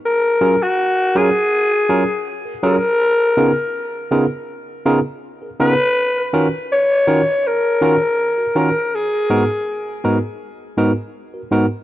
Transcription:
X:1
M:4/4
L:1/16
Q:1/4=81
K:F#
V:1 name="Alto saxophone"
A3 F3 G6 z2 A2- | A6 z8 B2- | B2 z2 c4 A6 A2 | G6 z8 z2 |]
V:2 name="Tine electric piano"
z2 [F,CEGA] z3 [F,CEGA] z3 [F,CEGA] z2 [GA] [F,CEGA] z | z2 [C,B,DEGA] z3 [C,B,DEGA] z3 [C,B,DEGA] z2 [GA] [C,B,DEGA] z | z2 [D,CEFA] z3 [D,CEFA] z3 [D,CEFA] z2 [FA] [D,CEFA] z | z2 [G,,B,DFA] z3 [G,,B,DFA] z3 [G,,B,DFA] z2 [FA] [G,,B,DFA] z |]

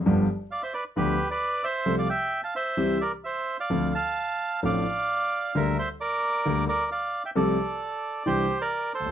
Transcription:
X:1
M:4/4
L:1/16
Q:1/4=132
K:Gdor
V:1 name="Bandoneon"
z4 [df] [ce] [=Bd]2 [GB]3 [Bd]3 [ce]2- | [ce] [df] [eg]3 [fa] [ce]4 [Bd]2 [ce]3 [df]- | [df]2 [fa]6 [df]8 | [Be]2 [ce]2 [Bd]6 [Bd]2 [df]3 [eg] |
[Ad]8 [Gc]3 [Bd]3 [Ac]2 |]
V:2 name="Grand piano" clef=bass
[G,,,G,,F,=B,DG]2 z6 [D,,D,F,B,DG]2 z6 | [C,,C,F,A,CA]2 z6 [C,,C,E,G,CG]2 z6 | [D,,D,F,CDA]2 z6 [A,,,A,,F,CDA]2 z6 | [D,,D,G,B,DA]2 z6 [D,,D,G,B,DA]2 z6 |
[C,,C,F,A,CA]2 z6 [C,,C,E,CDG]2 z4 z/2 D,,/2 _E,,/2 z/2 |]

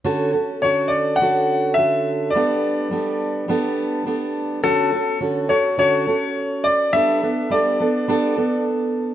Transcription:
X:1
M:4/4
L:1/8
Q:1/4=105
K:D
V:1 name="Upright piano"
z2 c d f2 e2 | d4 z4 | A2 z c c3 d | e2 d4 z2 |]
V:2 name="Steel-string acoustic guitar"
[D,CFA] [CFA] [D,CFA]2 [D,CFA]2 [D,CFA]2 | [G,B,DA]2 [G,B,DA]2 [G,B,DA]2 [G,B,DA]2 | [D,CFA] [CFA] [D,CFA] [CFA] [D,CFA] [CFA]3 | [G,B,DA] [B,DA] [G,B,DA] [B,DA] [G,B,DA] [B,DA]3 |]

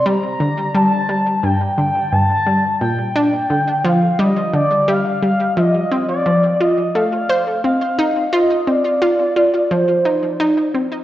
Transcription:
X:1
M:4/4
L:1/16
Q:1/4=87
K:Gm
V:1 name="Analog synth lead"
b4 a4 g4 a4 | g6 f2 e2 d2 f4 | e3 d3 e2 f4 f4 | e2 d6 c6 z2 |]
V:2 name="Synth arpeggio sound" clef=bass
G,2 D,2 G,2 G,2 G,,2 D,2 G,,2 G,2 | B,,2 D2 D,2 F,2 G,2 D,2 G,2 G,2 | F,2 C2 F,2 F2 A,2 c2 C2 E2 | F2 C2 F2 F2 F,2 E2 E2 C2 |]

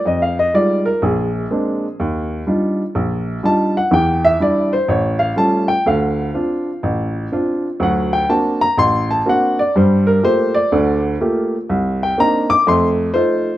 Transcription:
X:1
M:4/4
L:1/8
Q:"Swing" 1/4=124
K:Dphr
V:1 name="Upright piano"
(3e f e d B _A4 | z6 a _g | g =e d c ^c ^e a g | f4 z4 |
^f g a b c' a f d | c B c d2 z3 | z g b d' c' z c2 |]
V:2 name="Upright piano"
F,,2 [G,_A,EF] z B,,,2 [A,B,CD] z | E,,2 [G,DEF] z B,,,2 [G,DEF] z | [=E,,=E,]2 [G,D=E] z A,,,2 [G,A,^C^E] z | [D,,D,]2 [CDF] z A,,,2 [CDF] z |
[D,,^F,]2 [B,CD^F] z A,,,2 [B,CDF] z | [G,,G,]2 [A,B,FG] z [D,,D,]2 [A,B,FG] z | C,,2 [B,CDE] z [F,,A,]2 [A,EF] z |]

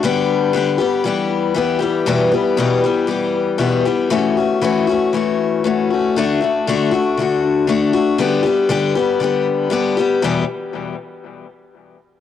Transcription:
X:1
M:4/4
L:1/8
Q:1/4=118
K:Edor
V:1 name="Steel-string acoustic guitar"
[D,G,B,G]2 [D,G,B,G] [G,B,G] [E,G,B,G]2 [E,G,B,G] [E,G,B,G] | [E,,B,,E,G,B,G] [E,G,B,G] [E,,B,,E,G,B,G] [E,G,B,G] [E,G,B,G]2 [E,,B,,E,G,B,G] [E,G,B,G] | [E,A,CF] [A,CF] [E,A,CF] [A,CF] [E,A,CF]2 [E,A,CF] [A,CF] | [D,A,DF] [A,DF] [D,A,DF] [A,DF] [D,A,DF]2 [D,A,DF] [A,DF] |
[D,G,B,G] [G,B,G] [D,G,B,G] [G,B,G] [D,G,B,G]2 [D,G,B,G] [G,B,G] | [E,,B,,E,G,B,G] z6 z |]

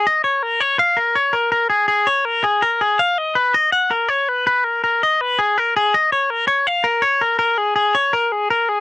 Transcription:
X:1
M:4/4
L:1/8
Q:1/4=163
K:Abdor
V:1 name="Clean electric guitar"
e d B d f B d B | B A A d B A B A | f ^d =B d ^f ^A _d B | =B ^A A ^d B _A ^A _A |
e d B d f B d B | B A A d B A B A |]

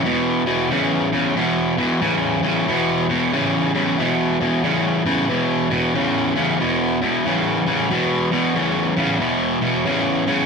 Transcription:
X:1
M:4/4
L:1/8
Q:"Swing" 1/4=92
K:Clyd
V:1 name="Overdriven electric guitar" clef=bass
[E,,B,,] [E,,B,,] [E,,^C,] [E,,C,] [E,,B,,] [E,,B,,] [E,,C,] [E,,C,] | [E,,B,,] [E,,B,,] [E,,^C,] [E,,C,] [E,,B,,] [E,,B,,] [E,,C,] [E,,C,] | [E,,B,,] [E,,B,,] [E,,^C,] [E,,C,] [E,,B,,] [E,,B,,] [E,,C,] [E,,C,] | [E,,B,,] [E,,B,,] [E,,^C,] [E,,C,] [E,,B,,] [E,,B,,] [E,,C,] [E,,C,] |]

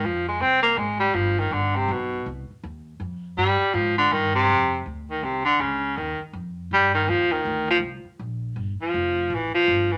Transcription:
X:1
M:3/4
L:1/8
Q:"Swing" 1/4=162
K:Cm
V:1 name="Baritone saxophone" clef=bass
F, A, C B, A, G, | F, E, D, C, =B,,2 | z6 | G,2 F, D, E, C,- |
C,2 z E, C, D, | _D,2 E, z3 | G, E, F, E,2 F, | z4 z F,- |
F,2 =E, F,2 E, |]
V:2 name="Upright bass" clef=bass
F,,2 C,,2 A,,,2 | G,,,2 G,,,2 =B,,,2 | C,, z E,,2 F,,2 | G,, z A,,2 G,,2 |
F,,2 D,,2 C,,2 | _D,,2 E,, z F,,2 | G,,2 E,,2 D,,2 | C,, z B,,,2 G,,, z |
F,,,2 =A,,, z G,,,2 |]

